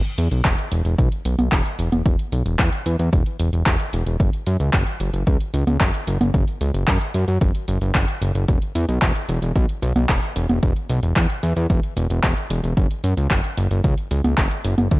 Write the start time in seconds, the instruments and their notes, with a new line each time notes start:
0.05 closed hi-hat
0.18 analog synth bass E2, closed hi-hat, cabasa
0.31 analog synth bass B1, closed hi-hat, cabasa
0.45 analog synth bass E1, kick, clap, closed hi-hat, cabasa
0.58 closed hi-hat, cabasa
0.72 analog synth bass E1, closed hi-hat, cabasa
0.85 analog synth bass E1, closed hi-hat, cabasa
0.98 analog synth bass B1, kick, closed hi-hat, cabasa
1.12 closed hi-hat
1.25 analog synth bass B1, closed hi-hat, cabasa
1.39 analog synth bass B1, closed hi-hat, high conga, cabasa
1.52 analog synth bass E1, kick, clap, closed hi-hat, cabasa
1.66 closed hi-hat, cabasa
1.79 analog synth bass E1, closed hi-hat, cabasa
1.92 analog synth bass E1, closed hi-hat, high conga, cabasa
2.06 analog synth bass E1, kick, closed hi-hat, cabasa
2.19 closed hi-hat
2.32 analog synth bass B1, closed hi-hat, cabasa
2.46 analog synth bass E1, closed hi-hat, cabasa
2.59 analog synth bass E2, kick, clap, closed hi-hat, cabasa
2.73 closed hi-hat, cabasa
2.86 analog synth bass E2, closed hi-hat, cabasa
2.99 analog synth bass E2, closed hi-hat, cabasa
3.13 analog synth bass E1, kick, closed hi-hat, cabasa
3.26 closed hi-hat
3.40 analog synth bass E1, closed hi-hat, cabasa
3.53 analog synth bass E1, closed hi-hat, cabasa
3.66 analog synth bass E1, kick, clap, closed hi-hat, cabasa
3.80 closed hi-hat, cabasa
3.93 analog synth bass E1, closed hi-hat, cabasa
4.06 analog synth bass E1, closed hi-hat, cabasa
4.20 analog synth bass F#1, kick, closed hi-hat, cabasa
4.33 closed hi-hat
4.47 analog synth bass F#2, closed hi-hat, cabasa
4.60 analog synth bass C#2, closed hi-hat, cabasa
4.73 analog synth bass F#1, kick, clap, closed hi-hat, cabasa
4.87 closed hi-hat, cabasa
5.00 analog synth bass F#1, closed hi-hat, cabasa
5.14 analog synth bass F#1, closed hi-hat, cabasa
5.27 analog synth bass C#2, kick, closed hi-hat, cabasa
5.40 closed hi-hat
5.54 analog synth bass C#2, closed hi-hat, cabasa
5.67 analog synth bass C#2, closed hi-hat, high conga, cabasa
5.81 analog synth bass F#1, kick, clap, closed hi-hat, cabasa
5.94 closed hi-hat, cabasa
6.07 analog synth bass F#1, closed hi-hat, cabasa
6.21 analog synth bass F#1, closed hi-hat, high conga, cabasa
6.34 analog synth bass F#1, kick, closed hi-hat, cabasa
6.48 closed hi-hat, cabasa
6.61 analog synth bass C#2, closed hi-hat, cabasa
6.74 analog synth bass F#1, closed hi-hat, cabasa
6.88 analog synth bass F#2, kick, clap, closed hi-hat, cabasa
7.01 closed hi-hat, cabasa
7.14 analog synth bass F#2, closed hi-hat, cabasa
7.28 analog synth bass F#2, closed hi-hat, cabasa
7.41 analog synth bass F#1, kick, closed hi-hat, cabasa
7.55 closed hi-hat, cabasa
7.68 analog synth bass F#1, closed hi-hat, cabasa
7.81 analog synth bass F#1, closed hi-hat, cabasa
7.95 analog synth bass F#1, kick, clap, closed hi-hat, cabasa
8.08 closed hi-hat, cabasa
8.22 analog synth bass F#1, closed hi-hat, cabasa
8.35 analog synth bass F#1, closed hi-hat, cabasa
8.48 analog synth bass E1, kick, closed hi-hat, cabasa
8.62 closed hi-hat
8.75 analog synth bass E2, closed hi-hat, cabasa
8.89 analog synth bass B1, closed hi-hat, cabasa
9.02 analog synth bass E1, kick, clap, closed hi-hat, cabasa
9.15 closed hi-hat, cabasa
9.29 analog synth bass E1, closed hi-hat, cabasa
9.42 analog synth bass E1, closed hi-hat, cabasa
9.56 analog synth bass B1, kick, closed hi-hat, cabasa
9.69 closed hi-hat
9.82 analog synth bass B1, closed hi-hat, cabasa
9.96 analog synth bass B1, closed hi-hat, high conga, cabasa
10.09 analog synth bass E1, kick, clap, closed hi-hat, cabasa
10.23 closed hi-hat, cabasa
10.36 analog synth bass E1, closed hi-hat, cabasa
10.49 analog synth bass E1, closed hi-hat, high conga, cabasa
10.63 analog synth bass E1, kick, closed hi-hat, cabasa
10.76 closed hi-hat
10.90 analog synth bass B1, closed hi-hat, cabasa
11.03 analog synth bass E1, closed hi-hat, cabasa
11.16 analog synth bass E2, kick, clap, closed hi-hat, cabasa
11.30 closed hi-hat, cabasa
11.43 analog synth bass E2, closed hi-hat, cabasa
11.57 analog synth bass E2, closed hi-hat, cabasa
11.70 analog synth bass E1, kick, closed hi-hat, cabasa
11.83 closed hi-hat
11.97 analog synth bass E1, closed hi-hat, cabasa
12.10 analog synth bass E1, closed hi-hat, cabasa
12.24 analog synth bass E1, kick, clap, closed hi-hat, cabasa
12.37 closed hi-hat, cabasa
12.50 analog synth bass E1, closed hi-hat, cabasa
12.64 analog synth bass E1, closed hi-hat, cabasa
12.77 analog synth bass F#1, kick, closed hi-hat, cabasa
12.91 closed hi-hat
13.04 analog synth bass F#2, closed hi-hat, cabasa
13.17 analog synth bass C#2, closed hi-hat, cabasa
13.31 analog synth bass F#1, kick, clap, closed hi-hat, cabasa
13.44 closed hi-hat, cabasa
13.57 analog synth bass F#1, closed hi-hat, cabasa
13.71 analog synth bass F#1, closed hi-hat, cabasa
13.84 analog synth bass C#2, kick, closed hi-hat, cabasa
13.98 closed hi-hat
14.11 analog synth bass C#2, closed hi-hat, cabasa
14.24 analog synth bass C#2, closed hi-hat, high conga, cabasa
14.38 analog synth bass F#1, kick, clap, closed hi-hat, cabasa
14.51 closed hi-hat, cabasa
14.65 analog synth bass F#1, closed hi-hat, cabasa
14.78 analog synth bass F#1, closed hi-hat, high conga, cabasa
14.91 analog synth bass D2, kick, closed hi-hat, cabasa